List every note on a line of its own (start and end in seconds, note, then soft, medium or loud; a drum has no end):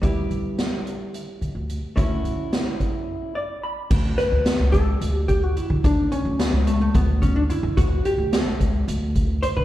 0.02 0.25 D2 medium
0.02 1.92 G3 medium
0.02 1.93 B3 medium
0.02 1.93 E4 medium
0.02 1.94 G4 medium
0.02 kick medium
0.02 closed hi-hat medium
0.30 1.18 D3 medium
0.30 closed hi-hat soft
0.58 snare medium
0.58 closed hi-hat medium
0.87 closed hi-hat soft
1.14 closed hi-hat medium
1.41 1.52 D3 medium
1.41 closed hi-hat soft
1.55 1.77 D2 medium
1.70 closed hi-hat soft
1.96 2.19 D2 medium
1.96 3.86 A3 medium
1.96 3.87 C#4 medium
1.96 3.35 E4 medium
1.96 3.88 F#4 medium
1.96 kick medium
1.96 closed hi-hat medium
2.24 2.90 D3 medium
2.24 closed hi-hat soft
2.53 snare medium
2.53 closed hi-hat medium
2.80 kick medium
2.80 closed hi-hat soft
3.35 3.61 D5 medium
3.63 3.89 B5 medium
3.90 4.13 D2 medium
3.90 kick loud
3.90 crash medium
4.18 4.72 B4 loud
4.18 snare soft
4.18 closed hi-hat medium
4.32 4.54 D2 medium
4.46 snare loud
4.46 closed hi-hat medium
4.60 4.93 C#2 medium
4.72 5.13 A4 loud
4.72 kick medium
4.72 closed hi-hat medium
5.01 5.56 D2 medium
5.01 closed hi-hat medium
5.13 5.24 G4 loud
5.28 5.43 G4 medium
5.28 kick medium
5.28 closed hi-hat medium
5.43 5.56 F#4 medium
5.56 5.84 E4 medium
5.56 closed hi-hat medium
5.70 5.81 D3 medium
5.84 6.06 D2 medium
5.84 6.11 D4 medium
5.84 kick loud
5.84 closed hi-hat medium
6.12 6.39 C#4 medium
6.12 closed hi-hat medium
6.25 6.47 D2 medium
6.39 6.67 B3 medium
6.39 snare loud
6.39 closed hi-hat medium
6.53 6.86 C#2 medium
6.67 6.80 A3 medium
6.67 closed hi-hat medium
6.82 6.95 A3 medium
6.94 7.49 D2 medium
6.94 7.23 B3 medium
6.94 kick medium
6.94 closed hi-hat medium
7.22 7.35 C#4 medium
7.22 kick medium
7.22 closed hi-hat medium
7.36 7.41 D4 medium
7.50 7.78 E4 medium
7.50 closed hi-hat medium
7.63 7.74 D3 medium
7.77 7.99 D2 medium
7.77 8.05 F#4 medium
7.77 kick loud
7.77 closed hi-hat medium
8.05 8.33 G4 medium
8.05 closed hi-hat medium
8.18 8.40 D2 medium
8.33 9.12 A4 medium
8.33 snare loud
8.33 closed hi-hat medium
8.46 8.79 C#2 medium
8.60 kick medium
8.60 closed hi-hat medium
8.88 9.43 D2 medium
8.88 closed hi-hat medium
9.15 kick medium
9.15 closed hi-hat medium
9.43 9.48 C5 medium
9.43 closed hi-hat medium
9.57 9.65 D3 medium
9.57 9.65 B4 medium